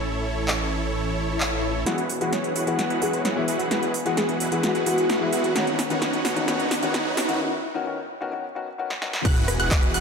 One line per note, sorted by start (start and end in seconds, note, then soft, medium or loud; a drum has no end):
0.00 1.84 A1 medium
0.00 1.83 A2 medium
0.00 1.83 E3 medium
0.00 1.84 A3 medium
0.00 1.83 C#4 medium
0.00 1.84 C#4 medium
0.00 1.84 E4 medium
0.00 1.84 A4 medium
0.00 1.84 C#5 medium
0.48 clap loud
0.94 swell medium
1.40 clap loud
1.86 2.19 E1 medium
1.86 1.97 E3 medium
1.86 5.52 E3 medium
1.86 1.97 G#3 medium
1.86 7.36 B3 medium
1.86 1.97 B3 medium
1.86 2.07 E4 medium
1.86 5.52 F#4 medium
1.86 2.07 F#4 medium
1.86 1.97 F#4 medium
1.86 2.07 G#4 medium
1.86 5.52 G#4 medium
1.86 2.07 B4 medium
1.86 2.07 F#5 medium
1.86 snare soft
1.86 closed hi-hat medium
1.86 riser medium
1.98 closed hi-hat soft
2.10 open hi-hat loud
2.20 2.53 E1 loud
2.20 2.31 E3 medium
2.20 2.32 G#3 medium
2.20 2.32 B3 medium
2.20 2.53 E4 medium
2.20 2.53 F#4 medium
2.20 2.32 F#4 loud
2.20 2.53 G#4 medium
2.20 2.53 B4 medium
2.20 2.53 F#5 medium
2.20 closed hi-hat medium
2.33 2.46 C#5 medium
2.33 snare soft
2.33 closed hi-hat medium
2.44 closed hi-hat soft
2.56 2.88 E1 loud
2.56 2.88 E4 medium
2.56 2.88 F#4 medium
2.56 2.88 G#4 medium
2.56 2.88 B4 medium
2.56 2.88 F#5 medium
2.56 open hi-hat loud
2.67 2.99 E3 medium
2.67 2.99 G#3 medium
2.67 2.99 B3 medium
2.67 2.99 F#4 loud
2.67 closed hi-hat medium
2.79 snare medium
2.79 closed hi-hat medium
2.90 3.23 E1 loud
2.90 3.22 E4 medium
2.90 3.22 F#4 medium
2.90 3.22 G#4 medium
2.90 3.22 B4 medium
2.90 3.22 F#5 loud
2.90 closed hi-hat soft
3.01 3.18 E3 medium
3.01 3.19 G#3 medium
3.01 3.19 B3 medium
3.01 3.19 F#4 loud
3.01 3.11 G#4 medium
3.01 open hi-hat loud
3.13 3.27 C#5 medium
3.13 closed hi-hat medium
3.25 3.46 E1 medium
3.25 3.45 E4 medium
3.25 3.45 F#4 medium
3.25 3.45 G#4 medium
3.25 3.45 B4 medium
3.25 3.45 F#5 medium
3.25 snare medium
3.25 closed hi-hat medium
3.36 3.53 E3 loud
3.36 3.53 G#3 medium
3.36 3.54 B3 medium
3.36 3.54 E4 loud
3.48 3.69 E1 medium
3.48 3.68 E4 medium
3.48 3.68 F#4 medium
3.48 3.68 G#4 medium
3.48 3.68 B4 medium
3.48 3.68 F#5 loud
3.48 open hi-hat loud
3.60 closed hi-hat medium
3.71 4.03 E1 loud
3.71 3.81 E3 medium
3.71 3.82 G#3 medium
3.71 3.82 B3 medium
3.71 3.92 E4 medium
3.71 3.92 F#4 medium
3.71 3.82 F#4 medium
3.71 3.92 G#4 medium
3.71 3.92 B4 medium
3.71 3.84 B4 medium
3.71 3.92 F#5 medium
3.71 snare medium
3.71 closed hi-hat medium
3.83 closed hi-hat soft
3.94 open hi-hat loud
4.05 4.38 E1 loud
4.05 4.16 E3 medium
4.05 4.16 G#3 medium
4.05 4.16 B3 medium
4.05 4.38 E4 medium
4.05 4.38 F#4 medium
4.05 4.17 F#4 loud
4.05 4.38 G#4 medium
4.05 4.38 B4 medium
4.05 4.38 F#5 medium
4.05 closed hi-hat medium
4.17 4.31 G#4 medium
4.17 snare medium
4.17 closed hi-hat medium
4.29 closed hi-hat soft
4.40 4.73 E1 loud
4.40 4.72 E4 medium
4.40 4.72 F#4 medium
4.40 4.72 G#4 medium
4.40 4.72 B4 medium
4.40 4.72 F#5 medium
4.40 open hi-hat loud
4.51 4.83 E3 medium
4.51 4.84 G#3 medium
4.51 4.84 B3 medium
4.51 4.84 F#4 loud
4.51 closed hi-hat medium
4.63 4.77 F#4 medium
4.63 snare medium
4.63 closed hi-hat medium
4.75 5.07 E1 medium
4.75 5.07 E4 medium
4.75 5.07 F#4 medium
4.75 5.07 G#4 medium
4.75 5.07 B4 medium
4.75 5.07 F#5 loud
4.75 closed hi-hat soft
4.86 5.03 E3 loud
4.86 5.03 G#3 medium
4.86 5.04 B3 medium
4.86 5.51 F#4 loud
4.86 5.04 F#4 loud
4.86 open hi-hat loud
4.98 closed hi-hat medium
5.10 5.30 E1 medium
5.10 5.30 E4 medium
5.10 5.30 F#4 medium
5.10 5.30 G#4 medium
5.10 5.30 B4 medium
5.10 5.30 F#5 medium
5.10 snare medium
5.10 open hi-hat medium
5.21 5.38 E3 loud
5.21 5.38 G#3 medium
5.21 5.38 B3 medium
5.21 5.38 E4 loud
5.33 5.53 E2 loud
5.33 5.53 E4 medium
5.33 5.53 F#4 medium
5.33 5.53 G#4 medium
5.33 5.53 B4 medium
5.33 5.53 F#5 loud
5.33 open hi-hat loud
5.44 closed hi-hat medium
5.55 5.88 B1 loud
5.55 5.66 D#3 medium
5.55 7.39 D#3 medium
5.55 5.66 B3 medium
5.55 7.39 C#4 medium
5.55 5.66 C#4 medium
5.55 5.77 D#4 medium
5.55 5.77 F#4 medium
5.55 5.67 F#4 medium
5.55 5.77 B4 medium
5.55 5.77 C#5 medium
5.55 5.77 F#5 medium
5.55 snare medium
5.55 closed hi-hat medium
5.67 closed hi-hat soft
5.79 snare medium
5.79 open hi-hat loud
5.90 6.23 B1 loud
5.90 6.01 D#3 medium
5.90 6.01 B3 medium
5.90 6.01 C#4 medium
5.90 6.22 D#4 medium
5.90 6.22 F#4 medium
5.90 6.01 F#4 medium
5.90 6.22 B4 medium
5.90 6.22 C#5 medium
5.90 6.22 F#5 medium
5.90 closed hi-hat medium
6.02 snare medium
6.02 closed hi-hat medium
6.13 closed hi-hat soft
6.25 6.46 B1 loud
6.25 6.46 D#4 medium
6.25 6.46 F#4 medium
6.25 6.46 B4 medium
6.25 6.46 C#5 medium
6.25 6.46 F#5 medium
6.25 snare medium
6.25 open hi-hat loud
6.36 6.46 D#3 medium
6.36 6.46 B3 medium
6.36 6.46 C#4 medium
6.36 6.47 F#4 loud
6.36 closed hi-hat medium
6.47 6.80 B1 loud
6.47 6.58 D#3 medium
6.47 6.59 B3 medium
6.47 6.59 C#4 medium
6.47 6.69 D#4 medium
6.47 6.69 F#4 medium
6.47 6.59 F#4 medium
6.47 6.69 B4 medium
6.47 6.69 C#5 medium
6.47 6.69 F#5 medium
6.47 snare medium
6.47 closed hi-hat medium
6.60 closed hi-hat soft
6.71 snare medium
6.71 open hi-hat loud
6.82 7.15 B1 loud
6.82 6.93 D#3 medium
6.82 6.93 B3 medium
6.82 6.93 C#4 medium
6.82 7.15 D#4 medium
6.82 7.14 F#4 medium
6.82 6.94 F#4 loud
6.82 7.15 B4 medium
6.82 7.15 C#5 medium
6.82 7.14 F#5 medium
6.82 closed hi-hat medium
6.94 snare medium
6.94 closed hi-hat medium
7.17 7.38 B1 medium
7.17 7.39 D#4 medium
7.17 7.38 F#4 medium
7.17 7.38 B4 medium
7.17 7.38 C#5 medium
7.17 7.38 F#5 medium
7.17 snare medium
7.17 open hi-hat loud
7.28 7.38 D#3 medium
7.28 7.38 B3 medium
7.28 7.39 C#4 medium
7.28 7.39 F#4 loud
7.28 closed hi-hat medium
7.40 7.51 D#3 medium
7.40 7.51 B3 medium
7.40 7.51 C#4 medium
7.40 7.51 F#4 medium
7.74 7.84 D#3 medium
7.74 7.85 B3 medium
7.74 7.85 C#4 medium
7.74 7.85 F#4 loud
7.86 7.97 D#3 medium
7.86 7.97 B3 medium
7.86 7.97 C#4 medium
7.86 7.97 F#4 medium
8.21 8.30 D#3 medium
8.21 8.31 B3 medium
8.21 8.31 C#4 medium
8.21 8.31 F#4 loud
8.32 8.43 D#3 medium
8.32 8.43 B3 medium
8.32 8.43 C#4 medium
8.32 8.43 F#4 medium
8.55 8.66 D#3 medium
8.55 8.66 B3 medium
8.55 8.66 C#4 medium
8.55 8.67 F#4 medium
8.78 8.89 D#3 medium
8.78 8.89 B3 medium
8.78 8.89 C#4 medium
8.78 8.90 F#4 medium
8.90 snare medium
9.01 9.12 D#3 medium
9.01 9.12 B3 medium
9.01 9.13 C#4 medium
9.01 9.13 F#4 medium
9.01 snare medium
9.13 snare medium
9.25 9.57 E1 loud
9.25 10.00 E3 medium
9.25 10.00 B3 medium
9.25 9.46 E4 medium
9.25 9.46 F#4 medium
9.25 10.00 F#4 medium
9.25 9.46 G#4 medium
9.25 10.00 G#4 medium
9.25 9.46 B4 medium
9.25 9.46 F#5 medium
9.25 9.46 F#6 medium
9.25 kick loud
9.25 closed hi-hat medium
9.25 crash loud
9.25 sub drop medium
9.37 closed hi-hat soft
9.48 cross-stick medium
9.48 open hi-hat loud
9.60 9.92 E1 loud
9.60 9.91 E4 medium
9.60 9.91 F#4 medium
9.60 9.91 G#4 medium
9.60 9.91 B4 medium
9.60 9.91 F#5 medium
9.60 9.91 F#6 medium
9.60 closed hi-hat medium
9.71 kick loud
9.71 clap loud
9.71 closed hi-hat medium
9.83 closed hi-hat soft
9.94 10.00 E1 loud
9.94 10.00 E4 medium
9.94 10.00 F#4 medium
9.94 10.00 G#4 medium
9.94 10.00 B4 medium
9.94 10.00 F#5 medium
9.94 10.00 F#6 medium
9.94 open hi-hat loud